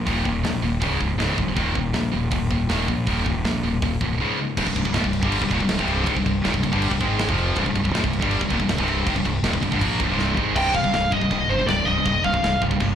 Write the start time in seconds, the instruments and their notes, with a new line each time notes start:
0.07 fingered electric bass D#1, distorted electric guitar D#2 A#2 D#3, kick, open hi-hat
0.25 fingered electric bass D#1, distorted electric guitar D#2 A#2, kick
0.43 fingered electric bass A#1, distorted electric guitar D#2 A#2, snare, open hi-hat
0.62 fingered electric bass D#1, distorted electric guitar D#2 A#2
0.82 fingered electric bass C#1, distorted electric guitar C#2 G#2 C#3, kick, open hi-hat
1.00 fingered electric bass C#1, distorted electric guitar C#2 G#2, kick
1.17 fingered electric bass C#1, distorted electric guitar C#2 G#2 C#3, snare, open hi-hat
1.38 fingered electric bass D1, distorted electric guitar C#2 G#2, kick
1.57 fingered electric bass D#1, distorted electric guitar D#2 A#2 D#3, kick, open hi-hat
1.75 fingered electric bass D#1, distorted electric guitar D#2 A#2, kick
1.93 fingered electric bass A#1, distorted electric guitar D#2 A#2, snare, open hi-hat
2.13 fingered electric bass D#1, distorted electric guitar D#2 A#2
2.31 fingered electric bass D#1, distorted electric guitar D#2 A#2, kick, open hi-hat
2.51 fingered electric bass D#1, distorted electric guitar D#2 A#2, kick
2.69 fingered electric bass D#1, distorted electric guitar D#2 A#2 D#3, snare, open hi-hat
2.88 fingered electric bass A#1, distorted electric guitar D#2 A#2, kick
3.07 fingered electric bass D#1, distorted electric guitar D#2 A#2 D#3, kick, open hi-hat
3.26 fingered electric bass D#1, distorted electric guitar D#2 A#2, kick
3.45 fingered electric bass A#1, distorted electric guitar D#2 A#2, snare, open hi-hat
3.63 fingered electric bass D#1, distorted electric guitar D#2 A#2
3.82 fingered electric bass D#1, distorted electric guitar D#2 A#2, kick, open hi-hat
4.01 fingered electric bass C1, distorted electric guitar D#2 A#2, kick
4.20 distorted electric guitar C#2 G#2 C#3
4.39 distorted electric guitar C#2 G#2
4.57 fingered electric bass C1, distorted electric guitar C2 G2, kick, crash
4.67 fingered electric bass C1, distorted electric guitar C2 G2, kick
4.76 fingered electric bass C1, distorted electric guitar C2 G2, kick, crash
4.85 fingered electric bass C1, distorted electric guitar C2 G2, kick
4.94 fingered electric bass A#1, distorted electric guitar A#2 F3, snare, crash
5.04 fingered electric bass C1, distorted electric guitar C2 G2, kick
5.13 crash
5.22 fingered electric bass G1, distorted electric guitar G2 D3 G3, kick
5.32 crash
5.42 fingered electric bass C1, distorted electric guitar C2 G2, kick
5.51 fingered electric bass D#1, distorted electric guitar D#2 A#2, kick, crash
5.60 fingered electric bass C1, distorted electric guitar C2 G2, kick
5.69 fingered electric bass C1, distorted electric guitar C2 G2, snare, crash
5.79 fingered electric bass C1, distorted electric guitar C2 G2 C3, kick
5.88 crash
6.06 fingered electric bass G#1, distorted electric guitar G#2 D#3, kick, crash
6.16 fingered electric bass C1, distorted electric guitar C2 G2, kick
6.25 fingered electric bass C1, distorted electric guitar C2 G2, kick, crash
6.44 fingered electric bass D#1, distorted electric guitar D#2 A#2, snare, crash
6.54 fingered electric bass C1, distorted electric guitar C2 G2, kick
6.63 fingered electric bass C1, distorted electric guitar C2 G2, kick, crash
6.72 fingered electric bass G1, distorted electric guitar G2 D3 G3, kick
6.82 crash
6.91 fingered electric bass C1, distorted electric guitar C2 G2, kick
7.00 fingered electric bass G#1, distorted electric guitar G#2 D#3 G#3, kick, crash
7.19 snare, crash
7.29 fingered electric bass F1, distorted electric guitar F2 C3 F3, kick
7.38 crash
7.56 fingered electric bass C1, distorted electric guitar C2 G2, kick, crash
7.66 fingered electric bass C1, distorted electric guitar C2 G2, kick
7.75 fingered electric bass C1, distorted electric guitar C2 G2, kick, crash
7.84 fingered electric bass C1, distorted electric guitar C2 G2, kick
7.94 fingered electric bass A#1, distorted electric guitar A#2 F3, snare, crash
8.04 fingered electric bass C1, distorted electric guitar C2 G2, kick
8.13 crash
8.22 fingered electric bass G1, distorted electric guitar G2 D3 G3, kick
8.31 crash
8.41 fingered electric bass C1, distorted electric guitar C2 G2, kick
8.50 fingered electric bass D#1, distorted electric guitar D#2 A#2, kick, crash
8.60 fingered electric bass C1, distorted electric guitar C2 G2, kick
8.68 fingered electric bass C1, distorted electric guitar C2 G2, snare, crash
8.78 fingered electric bass C1, distorted electric guitar C2 G2 C3, kick
8.88 crash
9.07 fingered electric bass G#1, distorted electric guitar G#2 D#3, kick, crash
9.16 fingered electric bass C1, distorted electric guitar C2 G2, kick
9.25 fingered electric bass C1, distorted electric guitar C2 G2, kick, crash
9.43 fingered electric bass D#1, distorted electric guitar D#2 A#2, snare, crash
9.53 fingered electric bass C1, distorted electric guitar C2 G2, kick
9.63 fingered electric bass C1, distorted electric guitar C2 G2, kick, crash
9.72 fingered electric bass G1, distorted electric guitar G2 D3, kick
9.81 fingered electric bass A#1, distorted electric guitar A#2 F3 A#3, kick, crash
10.00 fingered electric bass D1, distorted electric guitar D2 A2, kick, crash
10.09 fingered electric bass C1, distorted electric guitar C2 G2 C3
10.19 snare
10.37 fingered electric bass G#1, distorted electric guitar G#2 D#3 G#3, kick
10.56 fingered electric bass C1, distorted electric guitar C2 G2 C3, lead electric guitar G5, kick, crash, china
10.75 fingered electric bass C1, distorted electric guitar C2 G2, lead electric guitar F5, kick
10.84 distorted electric guitar C2 G2, kick
10.93 fingered electric bass C1, distorted electric guitar C2 G2, snare, china
11.12 fingered electric bass C1, distorted electric guitar C2 G2, lead electric guitar D#5, kick
11.21 distorted electric guitar C2 G2, kick
11.31 fingered electric bass C1, distorted electric guitar C2 G2, kick, china
11.50 fingered electric bass G1, distorted electric guitar C2 G2, lead electric guitar C5
11.59 distorted electric guitar C2 G2
11.67 fingered electric bass C1, distorted electric guitar C2 G2, lead electric guitar D5, snare, china
11.85 fingered electric bass C1, distorted electric guitar C2 G2, lead electric guitar D#5
11.97 distorted electric guitar C2 G2
12.05 fingered electric bass C1, distorted electric guitar C2 G2, kick, china
12.24 fingered electric bass C1, distorted electric guitar C2 G2, lead electric guitar F5, kick
12.33 distorted electric guitar C2 G2, kick
12.43 fingered electric bass C1, distorted electric guitar C2 G2, snare, china
12.62 fingered electric bass C1, distorted electric guitar C2 G2, kick
12.71 distorted electric guitar C2 G2, kick
12.80 fingered electric bass G1, distorted electric guitar C2 G2, kick, china